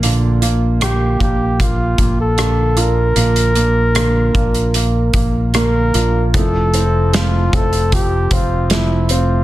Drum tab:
HH |x-x-x-x-x-x-x-x-|xxx-x-xxx-x-x-x-|x-x-x-xxx-x-x-x-|
SD |----r-------r---|----r-------r---|----o-------o---|
BD |------o-o-o-----|------o---o-----|o-----o-o-o-----|